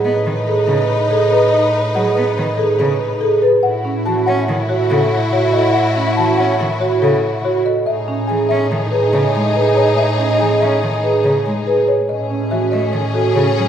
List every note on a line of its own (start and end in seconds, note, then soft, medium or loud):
0.00 3.51 A2 medium
0.00 3.38 D#4 medium
0.00 3.39 D#4 medium
0.00 0.11 G#4 medium
0.00 3.38 B4 medium
0.00 0.11 F#5 medium
0.04 0.20 B3 medium
0.04 0.32 B4 medium
0.04 0.32 D#5 medium
0.26 0.42 D#3 medium
0.47 0.74 G#4 medium
0.47 0.75 A4 medium
0.67 0.83 C#3 medium
0.67 0.96 G#4 medium
0.67 0.96 B4 medium
1.11 1.38 G#4 medium
1.11 1.38 A4 medium
1.31 1.59 A4 medium
1.31 1.59 B4 medium
1.52 1.80 D#5 medium
1.95 2.11 F#3 medium
1.95 2.22 G#4 medium
1.95 2.22 F#5 medium
2.15 2.32 B3 medium
2.15 2.43 B4 medium
2.15 2.43 D#5 medium
2.38 2.53 D#3 medium
2.57 2.86 G#4 medium
2.57 2.85 A4 medium
2.79 2.95 C#3 medium
2.79 3.07 G#4 medium
2.79 3.07 B4 medium
3.21 3.49 G#4 medium
3.21 3.49 A4 medium
3.42 3.70 A4 medium
3.42 3.70 B4 medium
3.63 7.74 A2 medium
3.63 7.61 E4 medium
3.63 7.61 F#4 medium
3.63 3.91 F#5 medium
3.85 4.12 C#4 medium
4.05 4.22 E3 medium
4.05 4.34 F#4 medium
4.05 4.33 A5 medium
4.26 4.43 C#4 medium
4.26 4.55 C#5 medium
4.26 4.54 F#5 medium
4.48 4.64 D#3 medium
4.69 4.97 F#4 medium
4.69 4.97 C#5 medium
4.90 5.06 C#3 medium
4.90 5.18 A4 medium
4.90 5.18 C#5 medium
5.33 5.60 F#4 medium
5.33 5.60 C#5 medium
5.53 5.81 A4 medium
5.53 5.81 D#5 loud
5.74 6.02 F#5 loud
5.96 6.24 C#4 medium
6.17 6.33 E3 medium
6.17 6.45 F#4 medium
6.17 6.45 A5 medium
6.37 6.54 C#4 medium
6.37 6.66 C#5 medium
6.37 6.66 F#5 medium
6.60 6.76 D#3 medium
6.80 7.08 F#4 medium
6.80 7.08 C#5 medium
7.02 7.18 C#3 medium
7.02 7.29 A4 medium
7.02 7.30 C#5 medium
7.45 7.72 F#4 medium
7.45 7.72 C#5 medium
7.65 7.93 A4 medium
7.65 7.93 D#5 medium
7.86 11.96 A2 medium
7.86 11.84 D#4 medium
7.86 11.84 G#4 medium
7.86 8.14 E5 medium
8.08 8.35 C#4 medium
8.27 8.45 E3 medium
8.27 8.56 G#4 medium
8.27 8.56 G#5 medium
8.49 8.66 C#4 medium
8.49 8.77 C#5 medium
8.49 8.77 E5 medium
8.71 8.87 D#3 medium
8.91 9.20 G#4 medium
8.91 9.19 B4 medium
9.13 9.29 C#3 medium
9.13 9.41 G#4 medium
9.13 9.41 C#5 medium
9.35 9.50 G#3 medium
9.55 9.83 G#4 medium
9.55 9.83 B4 medium
9.77 10.04 B4 medium
9.77 10.04 C#5 medium
9.97 10.25 E5 medium
10.19 10.46 C#4 medium
10.39 10.56 E3 medium
10.39 10.67 G#4 medium
10.39 10.67 G#5 medium
10.61 10.77 C#4 medium
10.61 10.89 C#5 medium
10.61 10.88 E5 medium
10.83 10.98 D#3 medium
11.03 11.31 G#4 medium
11.03 11.31 B4 medium
11.24 11.40 C#3 medium
11.24 11.52 G#4 medium
11.24 11.52 C#5 medium
11.46 11.61 G#3 medium
11.66 11.94 G#4 medium
11.66 11.94 B4 medium
11.88 12.15 B4 medium
11.88 12.15 C#5 medium
12.09 13.68 A2 medium
12.09 13.68 C#4 medium
12.09 13.68 G#4 medium
12.09 12.37 D#5 medium
12.31 12.58 C#4 medium
12.51 12.67 E3 medium
12.51 12.79 F#4 medium
12.51 12.79 E5 medium
12.72 12.88 A3 medium
12.72 13.00 A4 medium
12.72 13.00 D#5 medium
12.93 13.09 D#3 medium
13.14 13.42 F#4 medium
13.14 13.42 A4 medium
13.35 13.51 C#3 medium
13.35 13.63 G#4 medium
13.35 13.63 A4 medium
13.57 13.68 F#3 medium